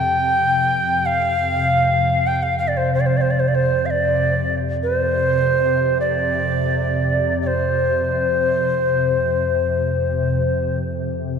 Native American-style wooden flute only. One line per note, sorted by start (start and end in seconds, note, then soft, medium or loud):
0.00 1.07 G5 medium
1.06 2.28 F5 medium
2.27 2.44 G5 medium
2.43 2.56 F5 medium
2.58 2.69 F5 medium
2.68 2.79 D5 medium
2.77 2.91 C5 medium
2.94 3.02 C5 medium
3.00 3.08 D5 medium
3.06 3.18 C5 medium
3.17 3.23 D5 medium
3.21 3.32 C5 medium
3.31 3.41 D5 medium
3.40 3.50 C5 soft
3.48 3.56 D5 medium
3.55 3.87 C5 medium
3.86 3.92 F5 soft
3.90 4.58 D5 medium
4.83 5.98 C5 medium
6.01 7.37 D5 medium
7.42 7.48 D5 soft
7.47 10.79 C5 medium